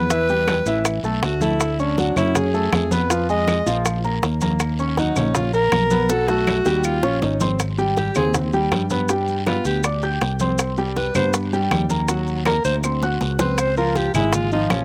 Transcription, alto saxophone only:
Already playing: B4
1.24 F#4
1.42 E4
1.80 D4
2.17 E4
2.36 G#4
2.74 G#4
2.93 B4
3.30 D#5
4.99 D#4
5.35 F4
5.54 A#4
6.10 A4
6.28 F#4
6.85 F4
7.22 D#4
7.98 G4
8.17 G#4
9.48 F4
9.66 G4
10.97 B4
11.15 C5
12.47 A#4
12.65 C5
13.40 B4
13.59 C5
13.78 A#4
13.96 G4
14.14 E4
14.34 F4
14.52 D#4
14.71 C#4

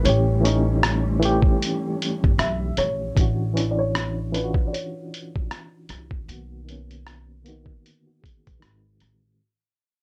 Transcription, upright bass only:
0.05 A1
2.24 G1
2.38 B1
2.77 A#1
3.17 A1
5.89 C2
6.28 B1
8.47 A#1
8.62 G#1
9.01 A1

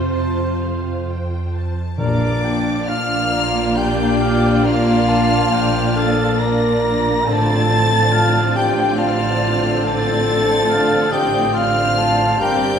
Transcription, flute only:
Already playing: C5
1.98 D5
2.88 F5
3.77 G5
4.65 F5
5.95 A5
6.38 A#5
7.26 A5
8.56 G5
8.98 F5
9.83 A5
11.12 G5
11.54 F5
12.40 G5

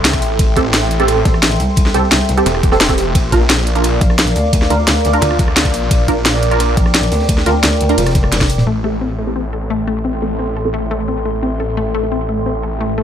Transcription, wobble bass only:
1.25 A1
1.60 C2
4.01 A#1
4.36 D2
6.77 A#1
7.12 D2
7.98 F1
8.32 F1

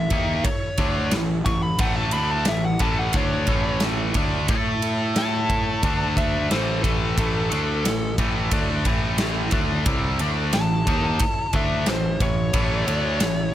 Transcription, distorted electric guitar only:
0.12 D#3 A#3 D#4
0.46 muted distorted electric guitar stroke
0.78 D3 A3 D4
1.12 A2 E3
1.47 A2 E3
1.80 A2 E3 A3
2.14 D3 A3 D4
2.47 A2 E3
2.80 A2 E3 A3
3.14 D3 A3 D4
3.47 A2 E3 A3
4.16 D3 A3 D4
4.49 A3 E4 A4
5.84 D3 A3 D4
6.50 A2 E3 A3
7.17 A2 E3 A3
7.50 D3 A3 D4
7.85 A2 E3
8.18 A2 E3 A3
8.52 D3 A3 D4
8.86 A2 E3 A3
9.52 D3 A3 D4
9.87 C3 G3 C4
10.20 D3 A3 D4
10.54 A2 E3
10.87 D#3 A#3 D#4
11.21 muted distorted electric guitar stroke
11.53 D3 A3 D4
11.88 A2 E3
12.22 A2 E3
12.53 A2 E3 A3
12.86 D3 A3 D4
13.20 A2 E3

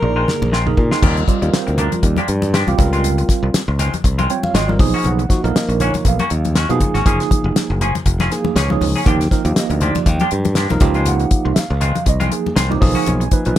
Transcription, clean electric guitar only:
0.02 muted clean electric guitar stroke
0.16 D#3 G#3 C4 F4
0.27 muted clean electric guitar stroke
0.52 D#3 G#3 C4 F4
0.66 muted clean electric guitar stroke
0.77 muted clean electric guitar stroke
0.91 G#3 C4 F4
1.02 F3 A#3 D4 G4
1.18 muted clean electric guitar stroke
1.42 muted clean electric guitar stroke
1.67 muted clean electric guitar stroke
1.78 F3 A#3 D4 G4
1.92 muted clean electric guitar stroke
2.03 muted clean electric guitar stroke
2.18 F3 A#3 D4 G4
2.29 muted clean electric guitar stroke
2.54 F3 A#3 D4 G4
2.69 muted clean electric guitar stroke
2.79 muted clean electric guitar stroke
2.93 G#3 C4 F4
3.18 muted clean electric guitar stroke
3.43 muted clean electric guitar stroke
3.68 muted clean electric guitar stroke
3.79 D#3 G#3 C4 F4
3.94 muted clean electric guitar stroke
4.04 muted clean electric guitar stroke
4.18 D#3 G#3 C4 F4
4.30 muted clean electric guitar stroke
4.54 D#3 G#3 C4 F4
4.69 muted clean electric guitar stroke
4.80 muted clean electric guitar stroke
4.94 A#3 C#4 F#4
5.19 muted clean electric guitar stroke
5.44 muted clean electric guitar stroke
5.69 muted clean electric guitar stroke
5.81 D#3 A#3 C#4 F#4
5.95 muted clean electric guitar stroke
6.06 muted clean electric guitar stroke
6.20 D#3 A#3 C#4 F#4
6.31 muted clean electric guitar stroke
6.56 D#3 A#3 C#4 F#4
6.70 muted clean electric guitar stroke
6.81 muted clean electric guitar stroke
6.94 A#3 C#4 F#4
7.06 F3 A#3 C#4 G#4
7.20 muted clean electric guitar stroke
7.46 muted clean electric guitar stroke
7.71 muted clean electric guitar stroke
7.81 F3 A#3 C#4 G#4
7.95 muted clean electric guitar stroke
8.06 muted clean electric guitar stroke
8.20 F3 A#3 C#4 G#4
8.31 muted clean electric guitar stroke
8.56 F3 A#3 C#4 G#4
8.71 muted clean electric guitar stroke
8.81 muted clean electric guitar stroke
8.96 A#3 C#4 G#4
9.06 F3 A#3 D4 G4
9.20 muted clean electric guitar stroke
9.45 muted clean electric guitar stroke
9.71 muted clean electric guitar stroke
9.81 F3 A#3 D4 G4
9.95 muted clean electric guitar stroke
10.06 muted clean electric guitar stroke
10.21 F3 A#3 D4 G4
10.32 muted clean electric guitar stroke
10.56 F3 A#3 D4 G4
10.70 muted clean electric guitar stroke
10.82 muted clean electric guitar stroke
10.95 G#3 C4 F4
11.20 muted clean electric guitar stroke
11.45 muted clean electric guitar stroke
11.70 muted clean electric guitar stroke
11.81 D#3 G#3 C4 F4
11.95 muted clean electric guitar stroke
12.06 muted clean electric guitar stroke
12.20 D#3 G#3 C4 F4
12.31 muted clean electric guitar stroke
12.56 D#3 G#3 C4 F4
12.70 muted clean electric guitar stroke
12.81 muted clean electric guitar stroke
12.95 A#3 C#4 F#4
13.20 muted clean electric guitar stroke
13.46 muted clean electric guitar stroke

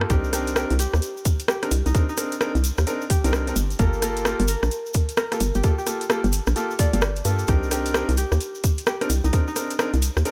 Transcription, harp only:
0.10 G4
0.33 G4
0.56 G4
0.79 G4
1.49 G4
1.86 D#4
2.09 D#4
3.10 G4
3.79 A#4
4.02 A#4
4.25 A#4
4.49 A#4
5.18 A#4
5.55 G4
5.78 G4
6.79 D5
7.48 G4
7.71 G4
7.95 G4
8.18 G4
8.87 G4
9.24 D#4
9.48 D#4

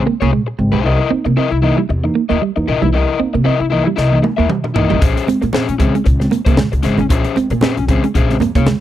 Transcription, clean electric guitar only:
0.07 A#3
0.22 A#3
0.33 G#3
0.59 muted clean electric guitar stroke
0.73 G#3
0.99 muted clean electric guitar stroke
1.10 C4
1.26 A#3
1.37 C4
1.63 muted clean electric guitar stroke
1.78 G3
1.89 muted clean electric guitar stroke
2.15 A#3
2.30 A#3
2.42 G3
2.68 muted clean electric guitar stroke
2.82 G3
3.09 muted clean electric guitar stroke
3.20 C4
3.34 A#3
3.45 C4
3.72 muted clean electric guitar stroke
3.87 G3
3.98 muted clean electric guitar stroke
4.24 A#3
4.38 A#3
4.49 G3
4.76 muted clean electric guitar stroke
4.90 G3
5.17 muted clean electric guitar stroke
5.28 C4
5.42 A#3
5.54 C4
5.80 muted clean electric guitar stroke
5.95 G#3
6.06 muted clean electric guitar stroke
6.32 A#3
6.47 A#3
6.59 G#3
6.84 muted clean electric guitar stroke
6.98 G#3
7.25 muted clean electric guitar stroke
7.37 C4
7.52 A#3
7.64 C4
7.89 muted clean electric guitar stroke
8.04 G#3
8.16 muted clean electric guitar stroke
8.41 A#3
8.56 A#3
8.67 G#3

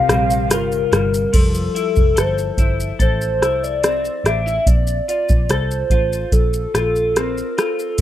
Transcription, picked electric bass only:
0.09 A#1
0.51 G1
0.92 G1
1.34 F1
1.97 F1
2.17 G1
2.58 G1
3.00 A1
3.42 C2
4.24 A1
4.67 A#1
5.30 A#1
5.49 C2
5.90 A1
6.32 A#1
6.75 A#1

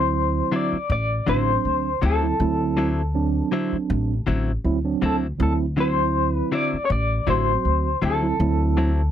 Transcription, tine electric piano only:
Already playing: F#3 C4 E4
1.27 F#3 C4 D4
2.22 F#3 C4 E4
2.40 F#3 C4 E4
3.14 F#3 C4 D4
4.64 F#3 C4 E4
4.84 F#3 C4 D4
5.39 F#3 C4 E4
5.77 F#3 C4 E4
7.27 F#3 C4 F#4
8.22 F#3 C4 E4
8.39 F#3 C4 E4

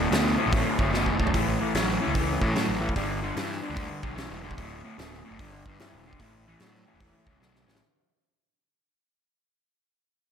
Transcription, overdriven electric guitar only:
Already playing: A2
0.11 D2 B2
0.38 D2 A2
0.53 D2 A2
0.79 D2 A2
0.92 D2 B2
1.19 D2 A2
1.33 A2 E3
1.60 A2 E3
1.75 A2 F#3
2.01 A2 E3
2.15 A2 E3
2.41 A2 E3
2.55 A2 F#3
2.81 A2 E3
2.96 G2 D3
3.23 G2 D3
3.35 G2 E3
3.62 G2 D3
3.76 G2 D3
4.03 G2 D3
4.16 G2 E3
4.43 G2 D3
4.57 D2 A2
4.84 D2 A2
4.98 D2 B2
5.25 D2 A2
5.39 G2 D3
5.66 G2 D3
5.80 G2 E3
6.07 G2 D3
6.21 A2 E3
6.47 A2 E3
6.61 A2 F#3
6.87 A2 E3
7.01 A2 E3
7.27 A2 E3
7.40 A2 F#3
7.66 A2 E3

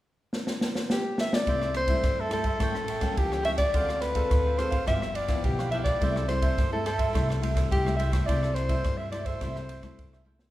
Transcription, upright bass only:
1.46 C2
2.04 G2
2.60 A1
3.17 C#2
3.74 D2
4.31 D2
4.88 G1
5.44 B1
6.01 C2
6.58 G2
7.14 C2
7.71 C2
8.28 C2
8.85 G2
9.42 C2
9.99 C2

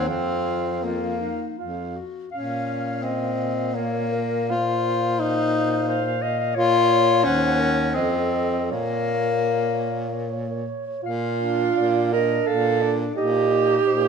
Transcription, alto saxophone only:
0.08 F5
0.85 F5
1.59 F5
2.33 F5
2.49 F5
2.66 F5
2.86 F5
3.03 F5
3.21 F5
3.36 F5
3.55 F5
3.73 F5
3.92 F5
4.11 F5
4.31 F5
4.48 F5
4.67 F5
4.85 F5
5.02 F5
5.20 F5
5.37 F5
5.55 F5
5.71 F5
5.87 F5
6.05 F5
6.22 F5
6.39 F5
6.56 C#5
6.75 C#5
6.91 C#5
7.10 C#5
7.26 F#5
7.44 F#5
7.60 F#5
7.79 F#5
7.95 D#5
8.14 D#5
8.31 D#5
8.51 D#5
8.70 C#5
8.91 C#5
9.12 C#5
9.31 C#5
9.51 C#5
9.71 C#5
9.90 C#5
10.10 C#5
10.28 C#5
10.48 C#5
10.67 C#5
10.86 C#5
11.03 F4
12.13 A#4
12.47 A4
13.16 G4

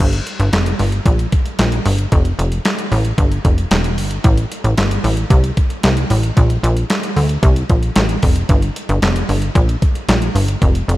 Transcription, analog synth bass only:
0.00 G1
0.40 G1
0.53 F1
0.79 G1
1.06 A#1
1.59 A#1
1.86 G1
2.12 F1
2.39 F1
2.92 A1
3.18 G1
3.45 F1
3.71 E1
3.98 G1
4.24 A1
4.64 A1
4.78 G1
5.04 A1
5.30 C2
5.84 C2
6.10 A1
6.37 A#1
6.63 A#1
7.16 D2
7.43 C2
7.70 A#1
7.96 A1
8.23 F1
8.49 G1
8.89 G1
9.02 F1
9.29 G1
9.55 A#1
10.09 A#1
10.35 G1
10.62 F1
10.88 F1

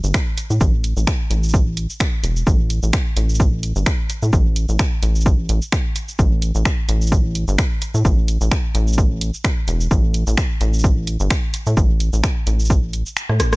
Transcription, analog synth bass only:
0.04 G1
0.50 A2
0.61 A1
0.97 A1
1.30 A1
2.24 E1
2.47 A1
2.83 A1
3.17 A1
3.76 G1
4.23 A2
4.33 A1
4.69 A1
5.03 A1
5.49 A1
6.19 A1
6.55 A1
6.89 A1
7.48 G1
7.94 A2
8.05 A1
8.41 A1
8.75 A1
9.68 E1
9.91 A1
10.27 A1
10.61 A1
11.20 G1
11.67 A2
11.77 A1
12.13 A1
12.47 A1
13.29 A2
13.40 A1

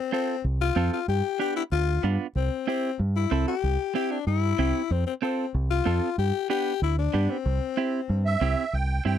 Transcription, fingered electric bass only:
0.44 C2
0.76 F2
1.08 G2
1.72 D2
2.04 G2
2.35 C2
2.99 G2
3.31 C2
3.63 C2
4.27 G2
4.59 C2
4.91 F2
5.54 C2
5.86 F2
6.18 G2
6.82 D2
7.14 G2
7.46 C2
8.09 G2
8.41 C2
8.73 C2
9.05 G2

